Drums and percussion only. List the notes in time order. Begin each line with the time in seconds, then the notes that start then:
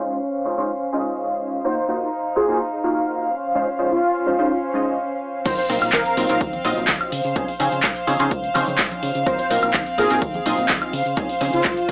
5.46 kick, closed hi-hat, crash, tambourine, shaker
5.58 closed hi-hat, tambourine, shaker
5.70 open hi-hat
5.82 closed hi-hat, tambourine, high woodblock, shaker
5.93 kick, clap, closed hi-hat, tambourine, shaker
6.06 closed hi-hat, tambourine, shaker
6.17 open hi-hat
6.29 closed hi-hat, tambourine, shaker
6.41 kick, closed hi-hat, tambourine, shaker
6.53 closed hi-hat, tambourine, high conga, shaker
6.65 open hi-hat
6.77 tambourine, shaker
6.88 kick, clap, closed hi-hat, shaker
7.01 closed hi-hat, tambourine, high woodblock, shaker
7.12 open hi-hat
7.24 tambourine, shaker
7.36 kick, closed hi-hat, tambourine, shaker
7.48 open hi-hat, tambourine, shaker
7.60 open hi-hat
7.72 closed hi-hat, tambourine, shaker
7.83 kick, clap, closed hi-hat, shaker
7.96 closed hi-hat, tambourine, shaker
8.07 open hi-hat
8.20 closed hi-hat, tambourine, shaker
8.31 kick, closed hi-hat, tambourine, shaker
8.44 closed hi-hat, tambourine, shaker
8.55 open hi-hat, high conga, high woodblock
8.68 tambourine, high conga, shaker
8.78 kick, clap, closed hi-hat, shaker
8.91 closed hi-hat, tambourine, high conga, shaker
9.03 open hi-hat
9.15 closed hi-hat, tambourine, shaker
9.27 kick, closed hi-hat, tambourine, shaker
9.39 closed hi-hat, tambourine, shaker
9.51 open hi-hat
9.63 closed hi-hat, tambourine, high woodblock, shaker
9.74 kick, clap, closed hi-hat, tambourine, shaker
9.86 closed hi-hat, tambourine, shaker
9.98 open hi-hat
10.10 closed hi-hat, tambourine, shaker
10.22 kick, closed hi-hat, tambourine, shaker
10.34 closed hi-hat, tambourine, high conga, shaker
10.46 open hi-hat
10.58 tambourine, shaker
10.69 kick, clap, closed hi-hat, shaker
10.82 closed hi-hat, tambourine, high woodblock, shaker
10.93 open hi-hat
11.06 tambourine, shaker
11.17 kick, closed hi-hat, tambourine, shaker
11.29 open hi-hat, tambourine, shaker
11.41 open hi-hat
11.53 closed hi-hat, tambourine, shaker
11.64 kick, clap, closed hi-hat, tambourine, shaker
11.77 closed hi-hat, tambourine, high conga, shaker
11.89 kick, open hi-hat